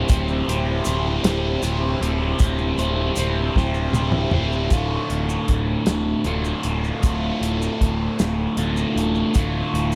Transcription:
0.09 D1 C4 E4 G4 C5, kick, closed hi-hat, maracas
0.28 maracas
0.48 D1 C4 E4 G4 C5, closed hi-hat
0.85 D1 C4 E4 G4 C5, closed hi-hat, maracas
1.24 D1 C4 E4 G4 C5, snare, closed hi-hat, maracas
1.62 D1 C4 E4 G4 C5, closed hi-hat, maracas
2.01 D1 C4 E4 G4 C5, closed hi-hat
2.39 D1 C4 E4 G4 C5, kick, closed hi-hat, maracas
2.58 maracas
2.77 D1 C4 E4 G4 C5, closed hi-hat, maracas
3.16 D1 C4 E4 G4 C5, closed hi-hat, maracas
3.56 D1 C4 E4 G4 C5, kick, snare
3.74 maracas
3.93 D1 C4 E4 G4 C5, high tom, maracas
4.12 mid tom
4.31 D1 C4 E4 G4 C5, mid tom
4.52 maracas
4.70 D1 D2 A2 D3 A3 F4, kick, closed hi-hat, maracas
5.10 D1, closed hi-hat
5.29 maracas
5.48 D1, kick, closed hi-hat
5.86 D1, snare, closed hi-hat, maracas
6.24 D1 D2 A2 D3 A3 F4, closed hi-hat
6.45 maracas
6.63 D1, closed hi-hat
6.84 maracas
7.02 D1 D2 A2 D3 A3 F4, kick, closed hi-hat, maracas
7.41 D1, closed hi-hat
7.62 maracas
7.81 D1, kick, closed hi-hat
8.19 D1, snare, closed hi-hat, maracas
8.57 D1 D2 A2 D3 A3 F4, closed hi-hat
8.77 maracas
8.96 D1, closed hi-hat
9.15 maracas
9.34 D1 D2 A2 D3 A3 F4, kick, closed hi-hat, maracas
9.74 D1, closed hi-hat

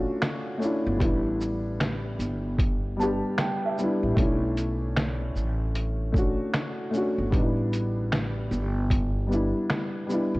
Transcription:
Already playing: A3 C#4 D4 F4 F#4
0.22 finger snap, snare, closed hi-hat
0.58 A3 C#4
0.62 D4 E4, shaker
0.87 G1
0.97 A1 G3 B3, kick
1.01 D4 E4, closed hi-hat
1.41 shaker
1.80 finger snap, snare, closed hi-hat
2.19 G1, closed hi-hat, shaker
2.59 kick, closed hi-hat
2.97 G3 B3 A5, shaker
3.01 D4 G4
3.38 G5, finger snap, snare, closed hi-hat
3.65 E5
3.77 G3 B3, shaker
3.81 D4 E4
4.03 A1
4.15 B1 A3 C#4, kick, closed hi-hat
4.19 D4 E4
4.57 closed hi-hat, shaker
4.96 finger snap, snare, closed hi-hat
5.35 A1, shaker
5.75 closed hi-hat
6.12 A3 C#4, kick
6.16 D4 F#4, shaker
6.54 finger snap, snare, closed hi-hat
6.91 A3 C#4, shaker
6.95 D4 F#4
7.18 G1
7.30 A1 G3 B3, kick, closed hi-hat
7.34 D4 D#4
7.43 E4
7.73 closed hi-hat, shaker
8.12 finger snap, snare, closed hi-hat
8.51 G1, shaker
8.90 kick, closed hi-hat
9.27 G3 B3
9.31 D4 E4, shaker
9.70 finger snap, snare, closed hi-hat
10.07 G3 B3, shaker
10.11 D4 E4
10.34 A1

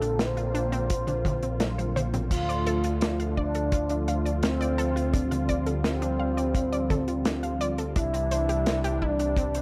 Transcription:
Already playing: A#1 D3 A#3 C4 F4 A4
0.02 D4, closed hi-hat
0.19 C4 C5, snare, closed hi-hat
0.37 F4, closed hi-hat
0.55 D4, closed hi-hat
0.72 C4, closed hi-hat
0.90 F4, kick, closed hi-hat
1.07 D4, closed hi-hat, mid tom
1.25 F4, kick, closed hi-hat, mid tom
1.43 C4, closed hi-hat
1.60 D4, snare, closed hi-hat, high tom
1.78 C5, closed hi-hat, high tom
1.96 C5, closed hi-hat, mid tom
2.14 C4, closed hi-hat, mid tom
2.31 D2 D3 F3 A3 F4 F5, kick, closed hi-hat, crash
2.49 D5, closed hi-hat
2.66 A4, closed hi-hat
2.84 F4, closed hi-hat
3.01 D4, snare, closed hi-hat
3.20 F5, closed hi-hat
3.37 D4 D5, kick
3.55 A4, closed hi-hat
3.72 F4, kick, closed hi-hat
3.89 D4, closed hi-hat
4.08 F5, closed hi-hat
4.26 D5, closed hi-hat
4.43 C4 F5, snare, closed hi-hat
4.61 D5, closed hi-hat
4.78 A4, closed hi-hat
4.96 F4, closed hi-hat
5.13 G3 D4, kick, closed hi-hat
5.31 F5, closed hi-hat, mid tom
5.49 D5, kick, closed hi-hat
5.66 A4, closed hi-hat
5.84 C4 F4, snare, closed hi-hat
6.02 D4, closed hi-hat
6.19 F5
6.37 D5, closed hi-hat
6.55 F5, kick, closed hi-hat
6.72 D5, closed hi-hat
6.90 A4, kick, closed hi-hat, mid tom
7.08 F4, closed hi-hat
7.25 D4, snare, closed hi-hat
7.43 F5, closed hi-hat
7.61 D5, closed hi-hat
7.78 A4, closed hi-hat
7.96 C2 C3 E3 G3 D4 E4, kick, closed hi-hat
8.14 C4, closed hi-hat
8.31 C5, closed hi-hat
8.49 G4, closed hi-hat
8.66 C5, snare, closed hi-hat
8.84 G4, closed hi-hat
9.02 D4 E4, kick
9.19 D4, closed hi-hat
9.37 C4, kick, closed hi-hat
9.54 C5, closed hi-hat

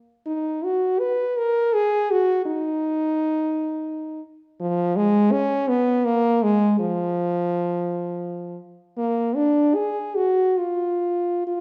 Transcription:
0.26 D#4
0.64 F#4
1.00 B4
1.37 A#4
1.75 G#4
2.11 F#4
2.46 D#4
4.60 F3
4.96 G#3
5.32 C#4
5.68 B3
6.05 A#3
6.43 G#3
6.79 F3
8.98 A#3
9.36 D4
9.75 G#4
10.15 F#4
10.59 F4
11.47 F4

